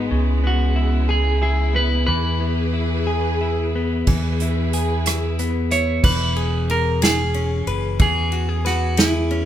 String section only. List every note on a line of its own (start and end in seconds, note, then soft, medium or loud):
0.00 2.04 G#3 medium
0.11 2.07 C#3 medium
0.11 2.06 B3 medium
0.11 4.04 E4 medium
2.08 4.05 E3 medium
2.08 4.05 G#4 medium
2.08 4.05 B4 medium
4.07 6.01 E3 medium
4.07 6.01 E4 medium
4.07 6.01 G#4 medium
4.07 6.01 B4 medium